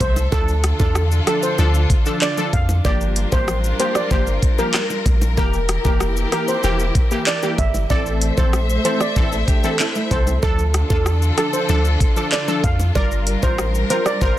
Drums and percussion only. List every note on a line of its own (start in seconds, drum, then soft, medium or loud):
0.00 kick medium
0.00 closed hi-hat medium
0.00 low bongo medium
0.00 shaker soft
0.16 high bongo medium
0.16 shaker medium
0.32 kick loud
0.32 high bongo medium
0.32 shaker medium
0.48 shaker soft
0.64 cross-stick loud
0.64 closed hi-hat medium
0.64 shaker medium
0.80 kick medium
0.80 high bongo medium
0.80 shaker medium
0.95 cross-stick loud
0.95 shaker medium
1.12 shaker medium
1.27 cross-stick loud
1.27 closed hi-hat medium
1.27 shaker medium
1.43 shaker medium
1.58 high bongo medium
1.58 shaker medium
1.74 shaker medium
1.90 kick loud
1.90 closed hi-hat medium
1.90 shaker soft
2.06 shaker medium
2.22 clap medium
2.22 shaker medium
2.37 high bongo medium
2.37 shaker soft
2.53 kick medium
2.53 closed hi-hat medium
2.53 low bongo medium
2.53 shaker soft
2.69 high bongo medium
2.69 shaker medium
2.85 kick loud
2.85 high bongo medium
2.85 shaker medium
3.01 shaker soft
3.16 closed hi-hat medium
3.16 shaker medium
3.32 kick loud
3.32 high bongo medium
3.32 shaker medium
3.48 cross-stick loud
3.48 shaker medium
3.64 shaker medium
3.80 closed hi-hat medium
3.80 shaker medium
3.95 cross-stick medium
3.95 shaker medium
4.11 kick loud
4.11 high bongo medium
4.11 shaker medium
4.27 shaker medium
4.42 kick loud
4.42 closed hi-hat medium
4.42 shaker soft
4.58 shaker medium
4.74 cross-stick loud
4.74 clap loud
4.74 shaker medium
4.90 high bongo medium
4.90 shaker soft
5.06 kick medium
5.06 closed hi-hat medium
5.06 low bongo medium
5.06 shaker soft
5.21 high bongo medium
5.21 shaker medium
5.37 kick loud
5.37 high bongo medium
5.37 shaker medium
5.53 shaker soft
5.69 cross-stick loud
5.69 closed hi-hat medium
5.69 shaker medium
5.85 kick loud
5.85 high bongo medium
5.85 shaker medium
6.00 cross-stick loud
6.00 shaker medium
6.17 shaker medium
6.32 cross-stick loud
6.32 closed hi-hat medium
6.32 shaker medium
6.48 shaker medium
6.63 high bongo medium
6.63 shaker medium
6.80 shaker medium
6.95 kick loud
6.95 closed hi-hat medium
6.95 shaker soft
7.11 shaker medium
7.27 clap loud
7.27 shaker medium
7.43 high bongo medium
7.43 shaker soft
7.58 kick medium
7.58 closed hi-hat medium
7.58 low bongo medium
7.58 shaker soft
7.74 high bongo medium
7.74 shaker medium
7.90 kick loud
7.90 high bongo medium
7.90 shaker medium
8.06 shaker soft
8.22 closed hi-hat medium
8.22 shaker medium
8.38 kick loud
8.38 high bongo medium
8.38 shaker medium
8.53 cross-stick loud
8.53 shaker medium
8.69 shaker medium
8.85 closed hi-hat medium
8.85 shaker medium
9.01 cross-stick medium
9.01 shaker medium
9.16 kick loud
9.16 high bongo medium
9.16 shaker medium
9.32 shaker medium
9.48 kick loud
9.48 closed hi-hat medium
9.48 shaker soft
9.64 shaker medium
9.79 clap loud
9.79 shaker medium
9.95 high bongo medium
9.95 shaker soft
10.11 kick medium
10.11 closed hi-hat medium
10.11 low bongo medium
10.11 shaker soft
10.27 high bongo medium
10.27 shaker medium
10.43 kick loud
10.43 high bongo medium
10.43 shaker medium
10.59 shaker soft
10.74 cross-stick loud
10.74 closed hi-hat medium
10.74 shaker medium
10.90 kick loud
10.90 high bongo medium
10.90 shaker medium
11.06 cross-stick loud
11.06 shaker medium
11.22 shaker medium
11.38 cross-stick loud
11.38 closed hi-hat medium
11.38 shaker medium
11.53 shaker medium
11.69 high bongo medium
11.69 shaker medium
11.85 shaker medium
12.00 kick loud
12.00 closed hi-hat medium
12.00 shaker soft
12.16 shaker medium
12.32 clap medium
12.32 shaker medium
12.48 high bongo medium
12.48 shaker soft
12.64 kick medium
12.64 closed hi-hat medium
12.64 low bongo medium
12.64 shaker soft
12.79 high bongo medium
12.79 shaker medium
12.95 kick loud
12.95 high bongo medium
12.95 shaker medium
13.11 shaker soft
13.27 closed hi-hat medium
13.27 shaker medium
13.43 kick loud
13.43 high bongo medium
13.43 shaker medium
13.58 cross-stick loud
13.58 shaker medium
13.75 shaker medium
13.90 closed hi-hat medium
13.90 low bongo medium
13.90 shaker medium
14.06 cross-stick medium
14.06 shaker medium
14.21 kick loud
14.21 high bongo medium
14.21 shaker medium